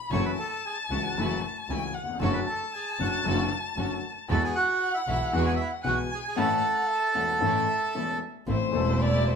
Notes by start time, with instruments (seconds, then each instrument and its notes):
Already playing: violin B5
0.11 double bass F#1, grand piano F#2 E3 F#3 A3 C#4 F#4, string section A3 E4 F#4, bandoneon C#5 C#6, violin A5
0.25 bandoneon B4 B5
0.39 bandoneon A4 A5
0.65 bandoneon G#4 G#5
0.89 double bass C#2, grand piano C#2 C#3 E3 A3 C#4 F#4, string section A3 E4 F#4, bandoneon F#4 F#5
1.16 double bass F#1, grand piano F#2 E3 F#3 A3 C#4 F#4, string section A3 E4 F#4
1.68 double bass C#2, grand piano C#2 C#3 E3 A3 C#4 F#4, string section A3 E4 F#4, violin G#5
1.94 violin F#5
2.03 grand piano D#2
2.09 grand piano E2
2.15 grand piano F2
2.20 double bass F#1, grand piano F#2 D3 F#3 A3 C#4 F#4, string section C#4 D4 F#4, bandoneon C#5 C#6, violin A5
2.33 bandoneon B4 B5
2.46 bandoneon A4 A5
2.73 bandoneon G#4 G#5
2.99 double bass F#1, grand piano F#2 D3 F#3 A3 C#4 F#4, string section C#4 D4 F#4, bandoneon F#4 F#5
3.25 double bass F#1, grand piano F#2 D3 F#3 A3 C#4 F#4, string section C#4 D4 F#4
3.76 double bass F#1, grand piano F#2 D3 F#3 A3 C#4 F#4, string section C#4 D4 F#4
4.28 grand piano E2 E3 G#3 B3 F#4, double bass E2, string section G#3 E4 F#4, violin F#5, bandoneon A5
4.32 bandoneon A4
4.44 bandoneon G#4 G#5
4.56 bandoneon F#4 F#5
4.94 bandoneon E4 E5
5.07 double bass B1, grand piano B1 B2 E3 G#3 B3 F#4, string section G#3 E4 F#4, bandoneon E4 E5
5.33 double bass E2, grand piano E2 E3 G#3 B3 F#4, string section G#3 E4 F#4, bandoneon F#5
5.37 bandoneon F#4
5.46 bandoneon G#4 G#5
5.56 bandoneon E4 E5
5.83 grand piano B1 B2 E3 G#3 B3 F#4, double bass B1, string section G#3 E4 F#4, bandoneon F#5, violin G#5
5.87 bandoneon F#4
6.12 bandoneon G#4 G#5
6.24 bandoneon G#4 G#5
6.36 grand piano A1 A2 E3 A3 C#4 A4, string section A3 C#4 E4, violin F#5, bandoneon A5
6.40 bandoneon A4
6.88 violin E5
7.15 grand piano E1 E2 E3 A3 C#4 A4, string section A3 C#4 E4, violin F#5
7.40 grand piano A1 A2 E3 A3 C#4 A4, string section A3 C#4 E4, violin E5
7.95 grand piano E1 E2 E3 A3 C#4 A4, string section A3 C#4 E4
8.47 double bass A1, grand piano A1 A2 E3 A3 C4 A4, string section A3 C4 E4, violin C5
8.71 grand piano E1 E2 E3 A3 C4, double bass E1, string section A3 C4 E4
8.75 grand piano A4
9.01 violin D5
9.21 violin D5
9.27 violin C5